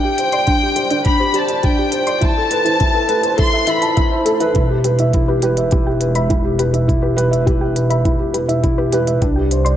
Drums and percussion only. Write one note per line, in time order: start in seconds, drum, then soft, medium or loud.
0.18 closed hi-hat medium
0.32 closed hi-hat soft
0.47 kick loud
0.47 closed hi-hat soft
0.76 closed hi-hat medium
0.90 closed hi-hat soft
1.05 kick loud
1.05 closed hi-hat soft
1.34 closed hi-hat medium
1.48 closed hi-hat soft
1.63 kick loud
1.63 closed hi-hat soft
1.92 closed hi-hat medium
2.07 closed hi-hat soft
2.21 kick loud
2.21 closed hi-hat soft
2.51 closed hi-hat medium
2.66 closed hi-hat soft
2.80 kick loud
2.80 closed hi-hat soft
3.09 closed hi-hat medium
3.23 closed hi-hat soft
3.38 kick loud
3.38 closed hi-hat soft
3.67 closed hi-hat medium
3.82 closed hi-hat soft
3.97 kick loud
3.97 closed hi-hat soft
4.26 closed hi-hat medium
4.40 closed hi-hat soft
4.55 kick medium
4.55 closed hi-hat soft
4.84 closed hi-hat medium
4.99 closed hi-hat soft
5.13 kick loud
5.13 closed hi-hat soft
5.42 closed hi-hat medium
5.57 closed hi-hat soft
5.71 kick loud
5.71 closed hi-hat soft
6.01 closed hi-hat medium
6.15 closed hi-hat soft
6.30 kick medium
6.30 closed hi-hat soft
6.59 closed hi-hat medium
6.74 closed hi-hat soft
6.89 kick loud
6.89 closed hi-hat soft
7.18 closed hi-hat medium
7.33 closed hi-hat soft
7.47 kick loud
7.47 closed hi-hat soft
7.76 closed hi-hat medium
7.91 closed hi-hat soft
8.05 kick loud
8.05 closed hi-hat soft
8.34 closed hi-hat medium
8.49 closed hi-hat soft
8.64 kick loud
8.64 closed hi-hat soft
8.92 closed hi-hat medium
9.07 closed hi-hat soft
9.22 kick medium
9.22 closed hi-hat soft
9.51 closed hi-hat medium
9.66 closed hi-hat soft